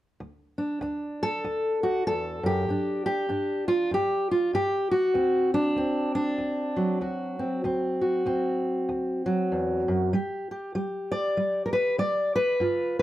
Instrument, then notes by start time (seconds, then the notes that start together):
steel-string acoustic guitar
0.20 D2
0.58 D4
0.81 D2 D4
1.23 A4
1.44 D2
1.83 F#4
2.07 E2 A4
2.43 F#2 G4
2.69 G2 D4
3.06 G4
3.29 G2 D4
3.68 F4
3.91 G2 G4
4.31 F4
4.53 G2 G4
4.91 F#4
5.14 D2 C4
5.54 D4
5.76 D2 C4
6.15 D4
6.38 D2
6.76 F#3
7.01 D2 F#4
7.39 C4
7.64 D2 C4
8.01 F#4
8.26 D2 C4
8.89 D2
9.26 F#3
9.52 E2
9.88 F#2
10.13 G3 G4
10.51 G4
10.75 G3 G4
11.12 D5
11.37 G3
11.66 A#4
11.73 B4
11.98 G3 D5
12.36 B4
12.60 G2 F4